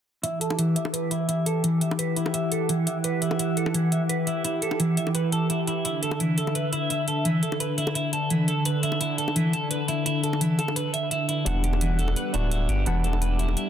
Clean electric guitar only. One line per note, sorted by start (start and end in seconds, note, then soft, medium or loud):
0.23 0.39 E4 medium
0.41 0.57 A4 medium
0.59 0.75 E3 medium
0.76 0.86 E5 medium
0.93 1.10 B4 medium
1.11 1.27 E4 medium
1.29 1.45 E4 medium
1.46 1.62 A4 medium
1.64 1.81 E3 medium
1.81 1.91 E5 medium
1.99 2.16 B4 medium
2.17 2.33 E4 medium
2.34 2.50 E4 medium
2.52 2.68 A4 medium
2.69 2.86 E3 medium
2.87 2.97 E5 medium
3.04 3.21 B4 medium
3.22 3.38 E4 medium
3.39 3.55 E4 medium
3.57 3.73 A4 medium
3.74 3.91 E3 medium
3.92 4.02 E5 medium
4.09 4.26 B4 medium
4.27 4.43 E4 medium
4.45 4.61 E4 medium
4.62 4.78 A4 medium
4.80 4.96 E3 medium
4.97 5.07 E5 medium
5.15 5.32 B4 medium
5.32 5.48 A4 medium
5.50 5.60 E4 medium
5.68 5.83 E4 medium
5.85 6.01 E4 medium
6.03 6.19 A4 medium
6.20 6.37 E3 medium
6.38 6.54 A4 medium
6.55 6.72 B4 medium
6.73 6.89 E4 medium
6.90 7.06 E4 medium
7.08 7.24 A4 medium
7.25 7.42 E3 medium
7.43 7.60 A4 medium
7.60 7.77 B4 medium
7.78 7.94 E4 medium
7.95 8.11 E4 medium
8.13 8.29 A4 medium
8.31 8.47 E3 medium
8.48 8.65 A4 medium
8.66 8.82 B4 medium
8.83 9.00 E4 medium
9.01 9.17 E4 medium
9.18 9.34 A4 medium
9.36 9.53 E3 medium
9.53 9.70 A4 medium
9.71 9.88 B4 medium
9.88 10.05 E4 medium
10.06 10.22 E4 medium
10.24 10.39 A4 medium
10.41 10.58 E3 medium
10.59 10.75 A4 medium
10.76 10.93 B4 medium
10.94 11.10 E5 medium
11.11 11.27 E4 medium
11.29 11.45 E4 medium
11.46 11.62 E4 medium
11.64 11.80 G4 medium
11.81 11.98 E3 medium
11.99 12.16 A4 medium
12.16 12.33 B4 medium
12.34 12.50 E4 medium
12.52 12.67 E4 medium
12.69 12.85 G4 medium
12.87 13.03 E3 medium
13.04 13.21 A4 medium
13.22 13.38 B4 medium
13.39 13.56 E4 medium
13.57 13.69 E4 medium